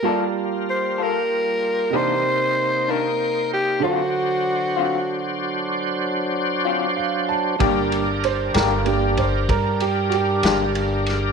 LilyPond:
<<
  \new Staff \with { instrumentName = "Tenor saxophone" } { \time 12/8 \key d \phrygian \tempo 4. = 63 bes'8 r8 c''8 bes'4. c''4. bes'4 g'8 | fis'2. r2. | \key g \minor r1. | }
  \new Staff \with { instrumentName = "Upright piano" } { \time 12/8 \key d \phrygian << { r1. | r1 r4 eis''8 a''8 | \key g \minor <g bes d'>8 r8 c''8 bes'8 <g bes d' g'>8 c''8 bes'8 g'8 <fis' g'>2 | } \\ { <g f' bes' d'' a''>2. <c ees' g' bes' d''>2. | <d d' fis' a' c''>1. | r1. | } >> }
  \new Staff \with { instrumentName = "Tonewheel organ" } { \time 12/8 \key d \phrygian <g bes f'>2. <e bes ees' c''>8 <bes ees' c''>2~ <bes ees' c''>8 | <fis d' c''>1. | \key g \minor <g d' bes'>1. | }
  \new Staff \with { instrumentName = "Clean electric guitar" } { \time 12/8 \key d \phrygian <g bes f' a'>8 r4 <g bes f' a'>8 r4 <c ees bes d'>8 r4 <c ees bes d'>8 r4 | <d fis c' eis'>8 r4 <d fis c' eis'>8 r2 r8 <d fis c' eis'>8 r4 | \key g \minor <g bes d' g'>8 r4 <g bes d' g'>8 r2 r8 <g bes d' g'>8 r4 | }
  \new Staff \with { instrumentName = "Upright bass" } { \clef bass \time 12/8 \key d \phrygian r1. | r1. | \key g \minor g,,4. g,,4. g,4. g,,4. | }
  \new DrumStaff \with { instrumentName = "Drums" } \drummode { \time 12/8 r4. r4. r4. r4. | r4. r4. r4. r4. | <bd cymr>8 cymr8 cymr8 <cymr sn>8 cymr8 <bd cymr>8 <bd cymr>8 cymr8 cymr8 <cymr sn>8 cymr8 <cymr sn>8 | }
>>